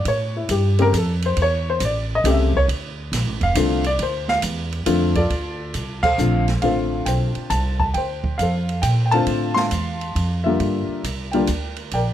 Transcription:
0.05 upright bass A2, upright piano C#5, kick, ride
0.37 upright piano E4
0.49 upright bass G2, upright piano G4, kick, hi-hat pedal, ride
0.79 upright piano C#3 A3 C4 G4 A#4, ride
0.93 upright bass F2, kick, hi-hat pedal, ride
0.97 upright piano A4
1.22 upright piano C5, ride
1.37 upright bass E2, kick, ride
1.42 upright piano C#5
1.70 upright piano C5
1.80 upright bass A1, kick, hi-hat pedal, ride
1.85 upright piano D5
2.15 upright piano D#5
2.24 upright bass C2, upright piano C#3 A3 C4 G4, kick, hi-hat pedal, ride
2.31 upright piano E5
2.54 upright piano C#5, kick
2.68 upright bass D2, kick, ride
3.12 upright bass A#1, kick, snare, hi-hat pedal, ride
3.27 upright bass A1
3.40 upright bass F1, upright piano F5, kick, ride
3.55 upright bass C2, upright piano D3 A3 C4 F4, kick, hi-hat pedal, ride
3.84 upright piano D5, ride
3.99 upright bass D2, upright piano C5, kick, ride
4.28 upright piano F5, snare
4.42 upright bass E2, kick, hi-hat pedal, ride
4.72 ride
4.86 upright bass F2, upright piano D3 A3 C4 F4, kick, hi-hat pedal, ride
5.15 upright piano F4 A4 D5, kick, ride
5.30 upright bass D2, kick, ride
5.74 upright bass C2, kick, hi-hat pedal, ride
6.03 upright piano A4 C5 F5, kick, crash
6.18 upright bass A#1, upright piano D3 A3 C4 F4, hi-hat pedal
6.48 snare, ride
6.62 upright bass A1, upright piano D3 A3 C4 F4 A4 C5 F5, kick, ride
7.06 upright bass B1, upright piano C5 G5, kick, hi-hat pedal, ride
7.35 muted upright bass stroke, ride
7.50 upright bass C2, upright piano A5, kick, hi-hat pedal, ride
7.80 upright piano A5, kick
7.94 upright bass D2, upright piano C5 G5, kick, ride
8.24 kick
8.38 upright bass F2, upright piano F5, kick, hi-hat pedal, ride
8.42 upright piano A4 C5
8.69 ride
8.82 upright bass A#2, upright piano G5, kick, hi-hat pedal, ride
9.06 upright piano G5
9.11 upright piano D3 A3 C4 F4 F5 A5, ride
9.16 upright piano C5
9.26 upright bass A2, kick, ride
9.54 upright piano F5 A5 C6, snare
9.71 upright bass E2, kick, hi-hat pedal, ride
10.01 ride
10.15 upright bass F2, kick, ride
10.44 upright piano D3 G3 A#3 F4 A#4 E5
10.60 upright bass G2, kick, ride
10.88 muted upright bass stroke
11.04 upright bass C2, kick, hi-hat pedal, ride
11.31 upright piano D3 G3 A#3 F4 A#4 D5 G5, ride
11.47 upright bass D2, kick, hi-hat pedal, ride
11.76 ride
11.91 upright bass A#1, upright piano A#4 D5 G5, kick, ride

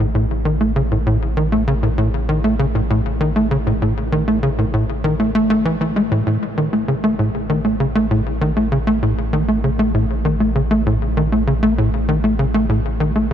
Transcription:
Already playing: sub bass A1
0.15 analog synth bass A2
0.45 analog synth bass D#3
0.61 analog synth bass A3
0.76 analog synth bass C#3
0.92 analog synth bass A2
1.06 analog synth bass A2
1.37 analog synth bass D#3
1.52 analog synth bass A3
1.68 analog synth bass C#3
1.83 analog synth bass A2
1.98 analog synth bass A2
2.29 analog synth bass D#3
2.44 analog synth bass A3
2.59 analog synth bass C#3
2.75 analog synth bass A2
2.90 analog synth bass A2
3.21 analog synth bass D#3
3.36 analog synth bass A3
3.51 analog synth bass C#3
3.66 analog synth bass A2
3.82 analog synth bass A2
4.12 analog synth bass D#3
4.28 analog synth bass A3
4.43 analog synth bass C#3
4.58 analog synth bass A2
4.74 analog synth bass A2
5.04 analog synth bass D#3
5.20 analog synth bass A3
5.35 analog synth bass A3
5.50 analog synth bass A3
5.65 analog synth bass E3
5.81 analog synth bass E3
5.96 analog synth bass G#3
6.11 analog synth bass A2
6.27 sub bass A1, analog synth bass A2
6.58 analog synth bass D#3
6.73 analog synth bass A3
6.88 analog synth bass C#3
7.04 analog synth bass A3
7.19 analog synth bass A2
7.49 analog synth bass D#3
7.65 analog synth bass A3
7.80 analog synth bass C#3
7.95 analog synth bass A3
8.11 analog synth bass A2
8.41 analog synth bass D#3
8.57 analog synth bass A3
8.72 analog synth bass C#3
8.87 analog synth bass A3
9.03 analog synth bass A2
9.33 analog synth bass D#3
9.48 analog synth bass A3
9.64 analog synth bass C#3
9.79 analog synth bass A3
9.94 analog synth bass A2
10.25 analog synth bass D#3
10.40 analog synth bass A3
10.55 analog synth bass C#3
10.71 analog synth bass A3
10.86 analog synth bass A2
11.17 analog synth bass D#3
11.32 analog synth bass A3
11.47 analog synth bass C#3
11.63 analog synth bass A3
11.78 analog synth bass A2
12.09 analog synth bass D#3
12.24 analog synth bass A3
12.39 analog synth bass C#3
12.54 analog synth bass A3
12.69 analog synth bass A2
13.00 analog synth bass D#3
13.16 analog synth bass A3

